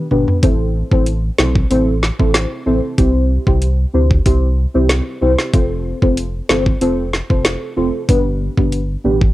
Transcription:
0.11 G1 B3 D4 G4 B4, mid tom
0.28 floor tom
0.43 A1 C4 E4 A4 C5, kick, closed hi-hat
0.92 A1 C4 E4 A4 C5, kick
1.06 closed hi-hat
1.38 B1 C4 E4 A4 C5, snare
1.55 kick
1.70 A1 C4 E4 A4 C5, closed hi-hat
2.03 snare
2.19 A1 C4 E4 A4 C5, kick
2.34 snare, closed hi-hat
2.66 A1 C4 E4 A4 C5
2.98 C2 C4 E4 G4 C5, kick, closed hi-hat
3.47 C2 C4 E4 G4 C5, kick
3.62 closed hi-hat
3.94 D2 C4 E4 G4 C5
4.11 kick
4.25 C2 C4 E4 G4 C5, kick, closed hi-hat
4.74 C2 C4 E4 G4 C5
4.89 snare, closed hi-hat
5.21 C2 C4 E4 G4 C5
5.38 snare
5.53 F1 C4 F4 A4 C5, kick, closed hi-hat
6.02 F1 C4 F4 A4 C5, kick
6.17 closed hi-hat
6.49 G1 C4 F4 A4 C5, snare
6.66 kick
6.81 F1 C4 F4 A4 C5, closed hi-hat
7.13 snare
7.30 F1 C4 F4 A4 C5, kick
7.45 snare, closed hi-hat
7.76 F1 C4 F4 A4 C5
8.08 G1 B3 D4 G4 B4, kick, closed hi-hat
8.57 G1 B3 D4 G4 B4, kick
8.72 closed hi-hat
9.04 A1 B3 D4 G4 B4
9.21 kick

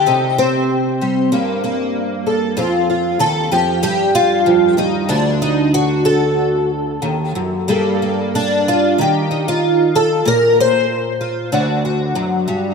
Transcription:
Already playing: G4
0.06 C3 D#4
0.38 C4
1.01 G3
1.32 G2 A#3
1.64 A#3
2.27 A4
2.57 F2 C4 F4
2.90 F4
3.19 D#2 A4
3.52 F2 G4
3.83 G2 G4
4.15 F4
4.46 F2
4.77 D#2 D#4
5.09 D2 D4
5.42 D#4
5.74 F#4
6.05 A4
7.02 D#2
7.35 F#2
7.68 G2 G3 A#3 A4
8.02 A#3
8.35 D4
8.68 F4
8.98 D#3 G4
9.31 D#4
9.48 F4
9.96 A4
10.25 A#2 A#4
10.60 C5
11.21 F4
11.52 D2 D4 F#4
11.85 F#4
12.15 F#2
12.48 G2

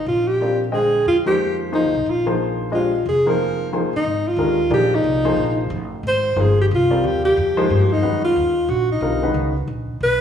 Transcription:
0.06 A#1 F4
0.28 G4
0.41 G3 C4 F4 A#4 D5
0.72 D3 G#3 G#4 C5 D#5 G5
1.06 F2 F4
1.26 F3 G#3 A#3 D#4 G4 C5
1.72 F3 A#3 D#4 G#4 C5
1.84 D#2
1.94 B1
2.06 A#1 F4
2.26 F3 A#3 D#4 G#4 C5
2.72 G#3 D4 F4 G4 C5 D#5
3.06 F1 G#4
3.26 F3 A#3 D#4 G#4 A#4 C5
3.73 F3 A#3 D#4 G#4 C5
3.93 A1 D#4
4.04 G#1
4.28 F4
4.37 D#2 D#3 G#3 D4 G4 A#4
4.70 A#1 F3 A#3 D#4 G4 G#4 D5
4.95 D#4
5.04 C2
5.25 F3 A#3 D#4 G#4 C5
5.36 A#1
5.70 A1
6.03 G#1
6.08 C5
6.36 G1 F3 A#3 D#4 G#4 C5
6.41 G#4
6.62 G4
6.71 C2
6.75 F4
6.90 G3 C4 F4 A#4 D5
7.04 D#2 G4
7.25 G4
7.37 F2
7.57 F3 G#3 A#3 D#4 C5
7.70 G2
7.93 D#4
8.02 F#2 D#3 G#3 C#4 F#4 B4
8.24 F4
8.36 D#2
8.68 A#1 F#4
8.92 D#4
9.01 B1 D3 G3 C4 F4 A#4
9.22 D#3 G#3 C#4 F#4 B4
9.34 C#2
9.67 A#1
10.01 B1 B4

